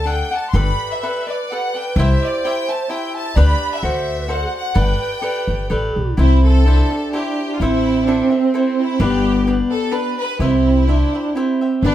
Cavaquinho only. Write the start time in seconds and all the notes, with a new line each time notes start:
0.05 D4 A4 D5 F#5
0.31 A4 D5 F#5
0.54 G4 A4 B4 D5
1.03 G4 A4 B4 D5
1.27 A4 B4 D5
1.52 G4 A4 B4 D5
1.74 A4 B4 D5
1.99 E4 G4 C5 E5
2.45 E4 G4 C5 E5
2.69 G4 C5 E5
2.90 E4 G4 C5 E5
3.36 D4 G4 B4 D5
3.83 F#4 A4 C5 D5
4.28 F#4 A4 C5 D5
4.74 G4 A4 B4 D5
5.22 G4 A4 B4 D5
5.70 G4 A4 B4 D5
6.17 E4 G4 C5 E5
6.66 E4 G4 C5 E5
6.90 G4 C5 E5
7.13 E4 G4 C5 E5
7.61 E4 A4 C5 E5
8.07 E4 A4 C5 E5
8.30 A4 C5 E5
8.54 E4 A4 C5 E5
9.00 D4 G4 B4 D5
9.47 D4 G4 B4 D5
9.91 D4 G4 B4 D5
10.40 E4 G4 C5 E5
10.87 E4 G4 C5 E5
11.14 G4 C5 E5
11.35 E4 G4 C5 E5
11.61 G4 C5 E5
11.85 D4 G4 B4 D5